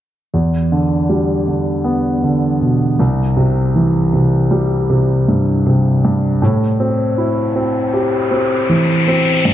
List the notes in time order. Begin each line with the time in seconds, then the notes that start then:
0.34 E2
0.72 D3
1.09 G3
1.48 D3
1.84 B3
2.24 D3
2.61 B2
2.99 C2
3.37 C3
3.76 E3
4.13 C3
4.51 G3
4.90 C3
5.28 G2
5.66 C3
6.05 G2
6.41 A2, riser
6.80 C4
7.18 E4
7.56 C4
7.94 G4
8.31 C4
8.69 E3
9.08 C4
9.45 G2